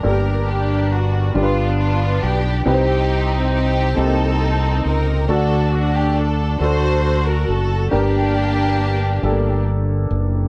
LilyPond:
<<
  \new Staff \with { instrumentName = "String section" } { \time 6/8 \key g \minor \tempo 4. = 46 << { bes'8 g'8 fis'8 f'8 f'8 g'8 | g'4 g'8 a'4 bes'8 | a'8 fis'16 g'16 a'8 c''8. bes'16 a'8 | g'2 r4 | } \\ { <d' g'>4. <b d'>4. | <c' ees'>4. <c' ees'>4. | <d' fis'>4. <fis' a'>4. | <bes d'>2 r4 | } >> }
  \new Staff \with { instrumentName = "Upright piano" } { \time 6/8 \key g \minor <bes d' g' a' bes'>4 r8 <d' f' g' bes' b'>4 r8 | <c' ees' g' b' c''>4 r8 <bes c' ees' g' a'>4 r8 | <a d' fis' a'>4 r8 <a d' fis' a'>4 r8 | <bes d' g' bes'>4 r8 <a bes d' g' a'>4 r8 | }
  \new Staff \with { instrumentName = "Upright piano" } { \clef bass \time 6/8 \key g \minor g,4. g,4. | c4. r4. | d4. r4. | g,4. r4. | }
  \new Staff \with { instrumentName = "Fingered electric bass" } { \clef bass \time 6/8 \key g \minor g,,4. g,,4 b,,8 | c,4. c,4 cis,8 | d,4. d,4 fis,,8 | g,,4. g,,4 fis,,8 | }
>>